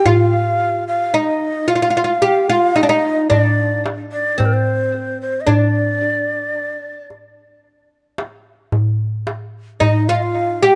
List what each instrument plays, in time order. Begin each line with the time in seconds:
0.06 oud F4, ney F5, darbuka dum
0.60 darbuka ka
0.88 ney F5
1.14 oud D#4, ney D#5
1.68 oud F4, ney F5, darbuka ka
1.75 oud F4
1.82 oud F4
1.90 oud F4
1.97 oud F4
2.04 oud F4
2.22 oud G4
2.50 oud F4, ney F5
2.76 oud D#4, ney D#5, darbuka tek
2.83 oud D4
2.89 oud D#4, ney D#5
3.30 oud D4, ney D5, darbuka dum
3.86 darbuka tek
4.12 ney D5
4.38 oud C4, ney C5, darbuka dum
4.45 ney A#4
4.53 ney C5
4.94 darbuka ka
5.22 ney C5
5.41 ney D#5
5.47 oud D4, ney D5, darbuka dum
6.02 darbuka ka
7.10 darbuka ka
8.18 darbuka tek
8.72 darbuka dum
9.27 darbuka tek
9.80 oud D#4, ney D#5, darbuka dum
10.08 oud F4, ney F5
10.15 ney D#5
10.23 ney F5
10.35 darbuka ka
10.63 oud G4, ney G5